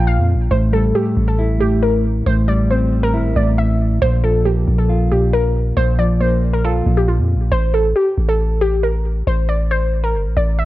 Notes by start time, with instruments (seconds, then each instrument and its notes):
Already playing: 808-style bass A#1, clean electric guitar A#2 A#3 F4
0.07 synth pluck F5
0.18 808-style bass F2
0.35 808-style bass A#1
0.51 808-style bass A1, clean electric guitar A2, synth pluck C5
0.73 clean electric guitar G3, synth pluck A4
0.95 clean electric guitar A3, synth pluck G4
1.17 808-style bass A1
1.28 synth pluck A4
1.39 clean electric guitar E4
1.60 clean electric guitar A2, synth pluck G4
1.83 synth pluck A#4
2.26 808-style bass A1, clean electric guitar A2, synth pluck C5
2.48 clean electric guitar G3, synth pluck D5
2.70 clean electric guitar C4, synth pluck C5
3.03 synth pluck A#4
3.14 808-style bass G1, clean electric guitar E4
3.25 808-style bass A1
3.36 808-style bass A1, clean electric guitar A2, synth pluck D5
3.58 synth pluck E5
4.02 808-style bass A#1, clean electric guitar A#2, synth pluck C5
4.23 clean electric guitar F3, synth pluck A4
4.45 clean electric guitar A#3, synth pluck G4
4.67 808-style bass A#1
4.78 synth pluck A4
4.89 clean electric guitar F4
5.11 clean electric guitar A#2, synth pluck G4
5.33 synth pluck A#4
5.77 808-style bass A#1, clean electric guitar A#2, synth pluck C5
5.99 clean electric guitar F3, synth pluck D5
6.20 clean electric guitar A#3, synth pluck C5
6.53 synth pluck A#4
6.64 clean electric guitar F4, synth pluck A4
6.86 808-style bass A#1, clean electric guitar A#2
6.97 synth pluck G4
7.08 synth pluck F4
7.19 808-style bass F2
7.35 808-style bass A#1
7.52 808-style bass A1, synth pluck C5
7.74 synth pluck A4
7.96 synth pluck G4
8.18 808-style bass A1
8.29 synth pluck A4
8.61 synth pluck G4
8.83 synth pluck A#4
9.27 808-style bass A1, synth pluck C5
9.49 synth pluck D5
9.71 synth pluck C5
10.04 synth pluck A#4
10.15 808-style bass G1
10.26 808-style bass A1
10.37 808-style bass A1, synth pluck D5
10.59 synth pluck E5